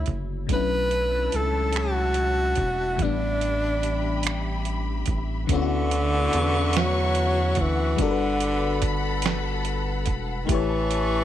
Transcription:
Already playing: fm electric piano D3 A3 E4 F#4 C#5, tenor saxophone E4
0.06 analog synth bass F#1, kick, closed hi-hat
0.47 analog synth bass B1, fm electric piano B2 F#3 A3, string section E4 C#5 E5 A5, kick, closed hi-hat
0.52 fm electric piano C#4 D4 E4, tenor saxophone B4
0.91 closed hi-hat
1.32 analog synth bass C#2, tenor saxophone A4, closed hi-hat
1.73 finger snap, closed hi-hat
1.78 tenor saxophone F#4
2.14 closed hi-hat
2.55 analog synth bass E1, kick, closed hi-hat
2.96 analog synth bass A1, fm electric piano A2 E3, string section G4 B5, kick, closed hi-hat
3.01 fm electric piano G3 B3, tenor saxophone D4
3.05 fm electric piano D4
3.41 closed hi-hat
3.83 closed hi-hat
4.23 finger snap, closed hi-hat
4.65 closed hi-hat
5.06 analog synth bass A1, kick, closed hi-hat
5.47 analog synth bass D2, fm electric piano D3 A3 B3, string section B4 E5 F#5 C#6, kick, closed hi-hat
5.52 tenor saxophone D3, fm electric piano C#4 E4 F4
5.62 fm electric piano F#4
5.91 closed hi-hat
6.33 analog synth bass E2, closed hi-hat
6.73 snare, closed hi-hat
6.78 tenor saxophone F#3
7.15 closed hi-hat
7.55 analog synth bass D2, kick, closed hi-hat
7.61 tenor saxophone E3
7.96 analog synth bass G1, fm electric piano G3 D4, string section A4 B5, kick, closed hi-hat
8.01 tenor saxophone D3, fm electric piano F#4 A4 A#4
8.11 fm electric piano B4
8.40 closed hi-hat
8.82 kick, closed hi-hat
9.22 snare, closed hi-hat
9.65 closed hi-hat
10.06 analog synth bass E1, kick, closed hi-hat
10.45 tenor saxophone D#3, fm electric piano A3
10.49 analog synth bass A1, tenor saxophone E3, fm electric piano E4 G4 B4, string section B4 A5 C#6, kick, closed hi-hat
10.54 fm electric piano C#5
10.91 closed hi-hat

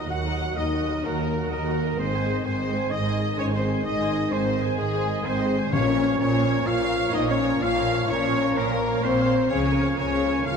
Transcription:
Already playing: trombone section D#3 F#3, french horn section D#4, viola section A#4 D#5
0.09 cello section D#2, double bass section D#2, viola section F#4 F#5, french horn section F#4, violin section F#5, oboe F#5
0.25 viola section A#4 D#5
0.42 viola section F#4 F#5
0.56 double bass section D#2, cello section D#2, french horn section D#4, viola section A#4 D#5, violin section D#5, oboe D#5
0.75 viola section F#4 F#5
0.90 viola section A#4 D#5
1.05 cello section D#2, double bass section D#2, french horn section A#3, viola section F#4 F#5, oboe A#4, violin section A#4
1.21 viola section A#4 D#5
1.37 viola section F#4 F#5
1.51 cello section D#2, double bass section D#2, french horn section A#3, violin section A#4, viola section A#4 D#5, oboe A#4
1.67 viola section F#4 F#5
1.83 viola section A#4 D#5
1.98 double bass section G#1, cello section G#2, trombone section D#3 G#3, french horn section C4, viola section G#4 D#5, violin section C5, oboe C5
2.14 viola section C5 G#5
2.29 viola section G#4 D#5
2.44 double bass section G#1, cello section G#2, french horn section C4, viola section C5 G#5, violin section C5, oboe C5
2.60 viola section G#4 D#5
2.76 viola section C5 G#5
2.91 double bass section G#1, cello section G#2, french horn section D#4, viola section G#4 D#5, oboe D#5, violin section D#5
3.06 viola section C5 G#5
3.22 viola section G#4 D#5
3.38 double bass section G#1, cello section G#2, french horn section C#4, viola section C5 G#5, violin section C#5, oboe C#5
3.53 french horn section C4, viola section G#4 D#5, violin section C5, oboe C5
3.69 viola section C5 G#5
3.83 double bass section G#1, cello section G#2, french horn section D#4, viola section G#4 D#5, violin section D#5, oboe D#5
4.01 viola section C5 G#5
4.16 viola section G#4 D#5
4.31 double bass section G#1, cello section G#2, french horn section C4, violin section C5, oboe C5, viola section C5 G#5
4.48 viola section G#4 D#5
4.63 viola section C5 G#5
4.78 double bass section G#1, cello section G#2, french horn section G#3, violin section G#4, oboe G#4, viola section G#4 D#5
4.94 viola section C5 G#5
5.10 viola section G#4 D#5
5.25 double bass section G#1, cello section G#2, french horn section C4, violin section C5, viola section C5 G#5, oboe C5
5.41 viola section G#4 D#5
5.57 viola section C5 G#5
5.71 double bass section A#1, timpani A#2, cello section A#2, trombone section F3 A#3, french horn section C#4, violin section C#5, oboe C#5, viola section C#5 F5
5.88 viola section A#4 C#5
6.04 viola section C#5 F5
6.19 double bass section A#1, cello section A#2, french horn section C#4, viola section A#4 C#5, violin section C#5, oboe C#5
6.35 viola section C#5 F5
6.51 viola section A#4 C#5
6.66 double bass section A#1, cello section A#2, french horn section F4, viola section C#5 F5, violin section F5, oboe F5
6.82 viola section A#4 C#5
6.99 viola section C#5 F5
7.13 double bass section A#1, cello section A#2, french horn section D#4, viola section A#4 C#5, violin section D#5, oboe D#5
7.28 french horn section C#4, violin section C#5, oboe C#5, viola section C#5 F5
7.46 viola section A#4 C#5
7.61 double bass section A#1, cello section A#2, french horn section F4, viola section C#5 F5, violin section F5, oboe F5
7.77 viola section A#4 C#5
7.93 viola section C#5 F5
8.08 double bass section A#1, cello section A#2, french horn section C#4, viola section A#4 C#5, violin section C#5, oboe C#5
8.24 viola section C#5 F5
8.40 viola section A#4 C#5
8.55 double bass section A#1, cello section A#2, french horn section A#3, violin section A#4, oboe A#4, viola section C#5 F5
8.72 viola section A#4 C#5
8.88 viola section C#5 F5
9.03 double bass section A#1, cello section A#2, french horn section C4, viola section A#4 C#5, violin section C5, oboe C5
9.19 viola section C#5 F5
9.35 viola section A#4 C#5
9.50 double bass section C#2, cello section C#3, trombone section F3 A#3, french horn section C#4, viola section G#4 F5, oboe C#5, violin section C#5
9.67 viola section A#4 G#5
9.82 viola section G#4 F5
9.97 double bass section C#2, cello section C#3, french horn section C#4, viola section A#4 G#5, violin section C#5, oboe C#5
10.13 viola section G#4 F5
10.29 viola section A#4 G#5
10.44 double bass section C#2, cello section C#3, french horn section F4, viola section G#4 F5, violin section F5, oboe F5

